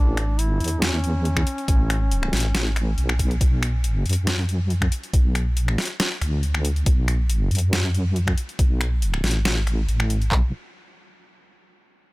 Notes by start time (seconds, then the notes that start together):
Already playing: A1 D4
0.17 finger snap, closed hi-hat
0.39 G#1 E4, closed hi-hat
0.60 E2, closed hi-hat
0.64 closed hi-hat
0.68 closed hi-hat
0.82 C#4, snare, closed hi-hat
1.04 closed hi-hat
1.25 closed hi-hat
1.37 finger snap, kick
1.47 open hi-hat
1.58 closed hi-hat
1.68 A1, kick, closed hi-hat
1.90 finger snap, closed hi-hat
2.12 closed hi-hat
2.23 finger snap
2.33 A1, snare, closed hi-hat, open hi-hat
2.40 closed hi-hat
2.55 snare, closed hi-hat
2.76 finger snap, closed hi-hat
2.98 B1, closed hi-hat
3.09 finger snap
3.19 kick, open hi-hat
3.31 closed hi-hat
3.41 B1, kick, closed hi-hat
3.63 finger snap, closed hi-hat
3.84 closed hi-hat
4.06 F#2, closed hi-hat
4.09 closed hi-hat
4.13 closed hi-hat
4.27 snare, closed hi-hat
4.49 closed hi-hat
4.70 closed hi-hat
4.82 finger snap, kick
4.92 closed hi-hat
5.03 closed hi-hat
5.13 B1, kick, closed hi-hat
5.35 finger snap, closed hi-hat
5.57 A#1, closed hi-hat
5.68 finger snap
5.78 snare, closed hi-hat
5.82 closed hi-hat
5.85 closed hi-hat
6.00 snare, closed hi-hat
6.21 D2, finger snap, closed hi-hat
6.43 closed hi-hat
6.54 finger snap
6.65 closed hi-hat
6.76 closed hi-hat
6.86 B1, kick, closed hi-hat
7.08 finger snap, closed hi-hat
7.30 closed hi-hat
7.51 F#2, closed hi-hat
7.55 closed hi-hat
7.58 closed hi-hat
7.73 snare, closed hi-hat
7.95 closed hi-hat
8.16 closed hi-hat
8.27 finger snap, kick
8.38 closed hi-hat
8.49 closed hi-hat
8.59 B1, kick, closed hi-hat
8.81 finger snap, closed hi-hat
9.02 closed hi-hat
9.14 finger snap
9.24 A1, snare, closed hi-hat
9.28 closed hi-hat
9.31 closed hi-hat
9.45 snare, closed hi-hat
9.67 finger snap, closed hi-hat
9.88 A1, closed hi-hat
10.00 finger snap
10.10 closed hi-hat
10.22 closed hi-hat
10.32 B1, kick, clap